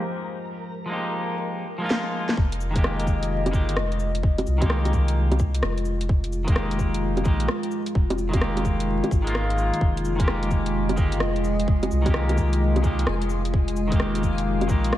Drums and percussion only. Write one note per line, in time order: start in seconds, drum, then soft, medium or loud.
1.91 snare loud
2.29 snare medium
2.37 kick loud
2.52 closed hi-hat soft
2.61 cabasa medium
2.76 kick loud
2.76 closed hi-hat medium
2.84 cross-stick loud
3.00 closed hi-hat soft
3.07 kick medium
3.07 cabasa medium
3.23 closed hi-hat medium
3.46 closed hi-hat soft
3.46 low bongo medium
3.53 kick loud
3.53 cabasa medium
3.69 closed hi-hat medium
3.77 cross-stick loud
3.92 closed hi-hat soft
4.00 cabasa medium
4.15 closed hi-hat medium
4.23 kick loud
4.38 closed hi-hat soft
4.38 low bongo medium
4.47 cabasa medium
4.62 kick loud
4.62 closed hi-hat medium
4.62 low bongo medium
4.70 cross-stick loud
4.85 closed hi-hat soft
4.85 low bongo soft
4.93 kick medium
4.93 cabasa medium
5.08 closed hi-hat medium
5.32 closed hi-hat soft
5.32 low bongo medium
5.39 kick loud
5.39 cabasa medium
5.55 closed hi-hat medium
5.63 cross-stick loud
5.78 closed hi-hat soft
5.85 cabasa medium
6.01 closed hi-hat medium
6.09 kick loud
6.24 closed hi-hat soft
6.33 cabasa medium
6.48 kick loud
6.48 closed hi-hat medium
6.56 cross-stick loud
6.71 closed hi-hat soft
6.79 kick medium
6.79 cabasa medium
6.94 closed hi-hat medium
7.17 closed hi-hat soft
7.17 low bongo medium
7.25 kick loud
7.25 cabasa medium
7.40 closed hi-hat medium
7.48 cross-stick loud
7.63 closed hi-hat soft
7.71 cabasa medium
7.86 closed hi-hat medium
7.95 kick loud
8.10 closed hi-hat soft
8.10 low bongo medium
8.18 cabasa medium
8.33 kick loud
8.33 closed hi-hat medium
8.33 low bongo soft
8.41 cross-stick loud
8.57 closed hi-hat soft
8.57 low bongo soft
8.65 kick medium
8.65 cabasa medium
8.80 closed hi-hat medium
9.04 closed hi-hat soft
9.04 low bongo medium
9.11 kick loud
9.11 cabasa medium
9.27 closed hi-hat medium
9.35 cross-stick loud
9.50 closed hi-hat soft
9.58 cabasa medium
9.74 closed hi-hat medium
9.81 kick loud
9.97 closed hi-hat soft
10.05 cabasa medium
10.20 kick loud
10.20 closed hi-hat medium
10.28 cross-stick loud
10.43 closed hi-hat soft
10.51 kick medium
10.51 cabasa medium
10.66 closed hi-hat medium
10.89 closed hi-hat soft
10.89 low bongo medium
10.97 kick loud
10.97 cabasa medium
11.12 closed hi-hat medium
11.20 cross-stick loud
11.36 closed hi-hat soft
11.44 cabasa medium
11.60 closed hi-hat medium
11.68 kick loud
11.83 closed hi-hat soft
11.83 low bongo medium
11.91 cabasa medium
12.06 kick loud
12.06 closed hi-hat medium
12.06 low bongo medium
12.14 cross-stick loud
12.29 closed hi-hat soft
12.29 low bongo soft
12.38 kick medium
12.38 cabasa medium
12.53 closed hi-hat medium
12.76 closed hi-hat soft
12.76 low bongo medium
12.84 kick loud
12.84 cabasa medium
12.99 closed hi-hat medium
13.07 cross-stick loud
13.22 closed hi-hat soft
13.30 cabasa medium
13.45 closed hi-hat medium
13.54 kick loud
13.68 closed hi-hat soft
13.76 cabasa medium
13.92 kick loud
13.92 closed hi-hat medium
14.00 cross-stick loud
14.15 closed hi-hat soft
14.23 kick medium
14.23 cabasa medium
14.38 closed hi-hat medium
14.61 closed hi-hat soft
14.61 low bongo medium
14.69 kick loud
14.69 cabasa medium
14.85 closed hi-hat medium
14.93 cross-stick loud